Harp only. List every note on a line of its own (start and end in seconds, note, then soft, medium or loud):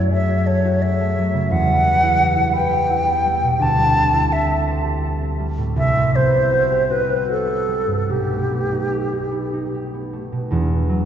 0.00 1.54 F#2 soft
0.00 1.17 F#3 soft
0.00 1.00 A3 soft
0.00 1.55 C#4 soft
0.00 2.02 E4 soft
0.00 0.27 F#4 soft
0.11 0.82 G#4 soft
0.28 0.64 F#4 soft
0.46 1.53 A4 soft
0.65 3.64 F#4 soft
0.84 1.54 G#4 soft
1.01 1.54 A3 soft
1.18 3.64 F#3 soft
1.34 1.54 C#3 soft
1.51 3.64 E2 medium
1.69 3.24 G3 soft
1.86 3.06 B3 soft
2.03 2.35 E4 soft
2.21 2.70 G4 medium
2.36 2.89 E4 soft
2.53 3.63 B4 soft
2.71 4.48 G4 soft
2.90 4.13 E4 soft
3.07 3.63 B3 soft
3.25 3.76 G3 soft
3.43 3.64 B2 soft
3.60 5.81 D2 medium
3.78 5.38 G3 soft
3.95 5.20 C4 soft
4.14 6.34 E4 soft
4.31 5.02 A4 soft
4.49 4.83 G4 soft
4.67 8.12 C5 soft
4.84 6.70 G4 soft
5.03 5.81 A4 soft
5.21 8.12 C4 soft
5.39 5.94 G3 soft
5.58 5.80 A2 soft
5.76 8.11 C2 medium
5.95 7.67 G3 soft
6.15 7.45 B3 soft
6.35 8.12 E4 soft
6.52 6.89 F#4 soft
6.71 7.08 G4 soft
6.90 7.28 F#4 soft
7.09 8.90 G4 soft
7.29 8.12 F#4 soft
7.46 8.49 B3 soft
7.68 11.05 G3 soft
7.87 8.12 G2 soft
8.09 10.54 B1 soft
8.31 10.12 A3 soft
8.51 9.30 B3 soft
8.72 9.12 D#4 soft
8.92 9.73 G4 soft
9.13 9.52 D#4 soft
9.31 9.93 B3 soft
9.53 10.55 D#4 soft
9.74 11.05 G4 soft
9.94 11.05 B3 soft
10.13 10.54 A3 soft
10.32 10.54 B2 soft
10.50 11.05 E1 soft
10.50 11.05 E2 medium
10.89 11.05 F#3 soft